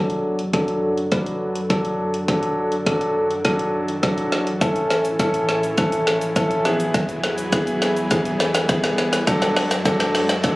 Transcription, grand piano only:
0, 0, Header, 1, 2, 480
1, 0, Start_track
1, 0, Tempo, 582524
1, 1882, Time_signature, 4, 2, 24, 8
1, 8701, End_track
2, 0, Start_track
2, 0, Title_t, "Grand piano"
2, 0, Program_c, 0, 0
2, 0, Note_on_c, 0, 54, 95
2, 0, Note_on_c, 0, 62, 89
2, 0, Note_on_c, 0, 69, 101
2, 323, Note_off_c, 0, 54, 0
2, 324, Note_off_c, 0, 62, 0
2, 326, Note_off_c, 0, 69, 0
2, 440, Note_on_c, 0, 54, 95
2, 442, Note_on_c, 0, 62, 84
2, 445, Note_on_c, 0, 69, 102
2, 804, Note_off_c, 0, 54, 0
2, 805, Note_off_c, 0, 62, 0
2, 806, Note_off_c, 0, 69, 0
2, 921, Note_on_c, 0, 54, 85
2, 923, Note_on_c, 0, 62, 77
2, 925, Note_on_c, 0, 71, 97
2, 1284, Note_off_c, 0, 54, 0
2, 1285, Note_off_c, 0, 62, 0
2, 1286, Note_off_c, 0, 71, 0
2, 1400, Note_on_c, 0, 54, 93
2, 1402, Note_on_c, 0, 62, 85
2, 1405, Note_on_c, 0, 69, 104
2, 1764, Note_off_c, 0, 54, 0
2, 1765, Note_off_c, 0, 62, 0
2, 1766, Note_off_c, 0, 69, 0
2, 1881, Note_on_c, 0, 54, 100
2, 1883, Note_on_c, 0, 62, 88
2, 1885, Note_on_c, 0, 69, 105
2, 2244, Note_off_c, 0, 54, 0
2, 2245, Note_off_c, 0, 62, 0
2, 2246, Note_off_c, 0, 69, 0
2, 2360, Note_on_c, 0, 54, 93
2, 2363, Note_on_c, 0, 62, 85
2, 2365, Note_on_c, 0, 69, 97
2, 2724, Note_off_c, 0, 54, 0
2, 2725, Note_off_c, 0, 62, 0
2, 2726, Note_off_c, 0, 69, 0
2, 2839, Note_on_c, 0, 54, 85
2, 2842, Note_on_c, 0, 62, 77
2, 2843, Note_on_c, 0, 69, 96
2, 3203, Note_off_c, 0, 54, 0
2, 3205, Note_off_c, 0, 62, 0
2, 3205, Note_off_c, 0, 69, 0
2, 3319, Note_on_c, 0, 54, 94
2, 3321, Note_on_c, 0, 62, 83
2, 3321, Note_on_c, 0, 78, 73
2, 3323, Note_on_c, 0, 69, 97
2, 3683, Note_off_c, 0, 54, 0
2, 3685, Note_off_c, 0, 62, 0
2, 3685, Note_off_c, 0, 69, 0
2, 3769, Note_off_c, 0, 78, 0
2, 3798, Note_on_c, 0, 52, 91
2, 3801, Note_on_c, 0, 61, 90
2, 3803, Note_on_c, 0, 69, 109
2, 4163, Note_off_c, 0, 52, 0
2, 4164, Note_off_c, 0, 61, 0
2, 4165, Note_off_c, 0, 69, 0
2, 4280, Note_on_c, 0, 52, 96
2, 4281, Note_on_c, 0, 61, 84
2, 4283, Note_on_c, 0, 69, 105
2, 4644, Note_off_c, 0, 52, 0
2, 4644, Note_off_c, 0, 61, 0
2, 4645, Note_off_c, 0, 69, 0
2, 4760, Note_on_c, 0, 52, 87
2, 4762, Note_on_c, 0, 61, 79
2, 4764, Note_on_c, 0, 69, 95
2, 5124, Note_off_c, 0, 52, 0
2, 5125, Note_off_c, 0, 61, 0
2, 5126, Note_off_c, 0, 69, 0
2, 5240, Note_on_c, 0, 52, 93
2, 5242, Note_on_c, 0, 61, 86
2, 5244, Note_on_c, 0, 69, 107
2, 5467, Note_off_c, 0, 52, 0
2, 5480, Note_on_c, 0, 52, 92
2, 5481, Note_on_c, 0, 59, 82
2, 5482, Note_off_c, 0, 61, 0
2, 5483, Note_off_c, 0, 69, 0
2, 5483, Note_on_c, 0, 68, 106
2, 6057, Note_off_c, 0, 52, 0
2, 6058, Note_off_c, 0, 59, 0
2, 6059, Note_off_c, 0, 68, 0
2, 6199, Note_on_c, 0, 52, 99
2, 6202, Note_on_c, 0, 59, 87
2, 6204, Note_on_c, 0, 68, 107
2, 6564, Note_off_c, 0, 52, 0
2, 6565, Note_off_c, 0, 59, 0
2, 6566, Note_off_c, 0, 68, 0
2, 6680, Note_on_c, 0, 52, 88
2, 6682, Note_on_c, 0, 59, 84
2, 6684, Note_on_c, 0, 68, 99
2, 7044, Note_off_c, 0, 52, 0
2, 7045, Note_off_c, 0, 59, 0
2, 7046, Note_off_c, 0, 68, 0
2, 7159, Note_on_c, 0, 52, 95
2, 7161, Note_on_c, 0, 59, 89
2, 7162, Note_on_c, 0, 68, 107
2, 7523, Note_off_c, 0, 52, 0
2, 7524, Note_off_c, 0, 59, 0
2, 7525, Note_off_c, 0, 68, 0
2, 7638, Note_on_c, 0, 54, 99
2, 7640, Note_on_c, 0, 62, 88
2, 7642, Note_on_c, 0, 69, 108
2, 8003, Note_off_c, 0, 54, 0
2, 8004, Note_off_c, 0, 62, 0
2, 8005, Note_off_c, 0, 69, 0
2, 8119, Note_on_c, 0, 54, 93
2, 8120, Note_on_c, 0, 62, 87
2, 8123, Note_on_c, 0, 69, 106
2, 8483, Note_off_c, 0, 54, 0
2, 8484, Note_off_c, 0, 62, 0
2, 8485, Note_off_c, 0, 69, 0
2, 8599, Note_on_c, 0, 54, 91
2, 8600, Note_on_c, 0, 62, 80
2, 8603, Note_on_c, 0, 69, 95
2, 8701, Note_off_c, 0, 54, 0
2, 8701, Note_off_c, 0, 62, 0
2, 8701, Note_off_c, 0, 69, 0
2, 8701, End_track
0, 0, End_of_file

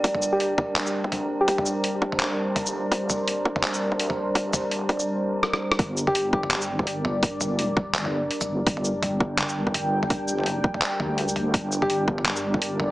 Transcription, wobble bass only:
0, 0, Header, 1, 2, 480
1, 0, Start_track
1, 0, Key_signature, -2, "minor"
1, 0, Tempo, 359281
1, 56, Time_signature, 4, 2, 24, 8
1, 17249, End_track
2, 0, Start_track
2, 0, Title_t, "Wobble bass"
2, 0, Program_c, 0, 39
2, 54, Note_on_c, 0, 31, 100
2, 519, Note_off_c, 0, 31, 0
2, 1253, Note_on_c, 0, 38, 99
2, 1959, Note_off_c, 0, 38, 0
2, 1975, Note_on_c, 0, 31, 97
2, 2440, Note_off_c, 0, 31, 0
2, 2695, Note_on_c, 0, 29, 99
2, 3880, Note_off_c, 0, 29, 0
2, 3895, Note_on_c, 0, 31, 94
2, 4359, Note_off_c, 0, 31, 0
2, 5094, Note_on_c, 0, 38, 96
2, 5799, Note_off_c, 0, 38, 0
2, 5814, Note_on_c, 0, 31, 99
2, 6279, Note_off_c, 0, 31, 0
2, 6294, Note_on_c, 0, 29, 96
2, 6759, Note_off_c, 0, 29, 0
2, 7735, Note_on_c, 0, 31, 100
2, 8199, Note_off_c, 0, 31, 0
2, 8215, Note_on_c, 0, 31, 95
2, 9159, Note_off_c, 0, 31, 0
2, 9174, Note_on_c, 0, 31, 99
2, 10599, Note_off_c, 0, 31, 0
2, 10617, Note_on_c, 0, 31, 95
2, 11081, Note_off_c, 0, 31, 0
2, 11339, Note_on_c, 0, 31, 99
2, 11561, Note_off_c, 0, 31, 0
2, 11577, Note_on_c, 0, 31, 94
2, 12040, Note_off_c, 0, 31, 0
2, 12056, Note_on_c, 0, 31, 96
2, 13000, Note_off_c, 0, 31, 0
2, 13013, Note_on_c, 0, 31, 93
2, 14015, Note_off_c, 0, 31, 0
2, 14015, Note_on_c, 0, 30, 93
2, 14439, Note_off_c, 0, 30, 0
2, 14694, Note_on_c, 0, 38, 96
2, 15399, Note_off_c, 0, 38, 0
2, 15415, Note_on_c, 0, 31, 98
2, 15879, Note_off_c, 0, 31, 0
2, 15894, Note_on_c, 0, 31, 97
2, 16839, Note_off_c, 0, 31, 0
2, 16855, Note_on_c, 0, 31, 97
2, 17249, Note_off_c, 0, 31, 0
2, 17249, End_track
0, 0, End_of_file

